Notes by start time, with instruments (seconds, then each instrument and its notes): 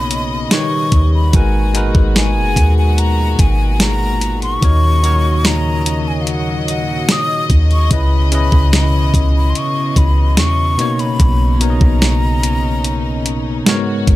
Already playing: 808-style bass B1, tine electric piano B2 A#3 B3 D#4 C#5, string section B2 C#3 C#4 D#5, flute B5
0.11 closed hi-hat
0.50 tine electric piano D#3 D#4 G4 B4 C#5, string section G3, flute C#6, snare, closed hi-hat
0.92 808-style bass D#2, kick, closed hi-hat
1.14 flute B5
1.33 808-style bass G#1, string section A#2 B2 G#3 F#4, tine electric piano G#3 D#4 F#4 A#4 B4, flute G#5, kick, closed hi-hat
1.74 tine electric piano G#3 D#4 F#4 A#4 B4, closed hi-hat
1.95 808-style bass G#1, kick
2.16 flute G#5, snare, closed hi-hat
2.36 808-style bass F#1
2.56 808-style bass D#2, kick, closed hi-hat
2.78 flute G#5
2.98 flute A#5, closed hi-hat
3.39 808-style bass G#1, flute G#5, kick, closed hi-hat
3.80 flute A#5, snare, closed hi-hat
4.21 closed hi-hat
4.42 flute C#6, closed hi-hat
4.61 808-style bass D#2, string section C#3 F#3 D#5, tine electric piano D#3 D#4 F#4 A#4 C#5, kick, closed hi-hat
5.02 tine electric piano D#3 D#4 F#4 A#4 C#5, closed hi-hat
5.45 flute A#5, snare, closed hi-hat
5.86 closed hi-hat
6.08 flute G#5
6.22 flute F5
6.27 flute F#5, closed hi-hat
6.68 flute F#5, closed hi-hat
7.09 flute D#6, snare, closed hi-hat
7.50 808-style bass D#2, kick, closed hi-hat
7.71 flute C#6, closed hi-hat
7.90 808-style bass C#2, string section B2 E3, tine electric piano C#3 C#4 E4 B4 D#5, flute B5, kick, closed hi-hat
8.31 tine electric piano C#3 C#4 E4 B4 D#5, flute B5, closed hi-hat
8.52 808-style bass C#2, kick
8.73 flute B5, snare, closed hi-hat
9.14 808-style bass C#2, kick, closed hi-hat
9.36 flute B5
9.50 flute C6
9.55 flute C#6, closed hi-hat
9.96 808-style bass C#2, flute B5, kick, closed hi-hat
10.37 808-style bass E2, flute C#6, snare, closed hi-hat
10.78 tine electric piano B2 A#3 B3 D#4 C#5, string section C#3 C#4 D#4, closed hi-hat
10.99 flute B5, closed hi-hat
11.20 808-style bass B1, kick, closed hi-hat
11.60 tine electric piano B2 B3 D#4 A#4 C#5, flute A#5, closed hi-hat
11.70 tine electric piano D#5
11.81 808-style bass B1, kick
12.02 snare, closed hi-hat
12.43 closed hi-hat
12.84 closed hi-hat
13.26 closed hi-hat
13.66 tine electric piano G#2 G#3 B3 F#4 A#4 C#5, string section C#3 F#4, snare, closed hi-hat
14.07 808-style bass G#1, kick, closed hi-hat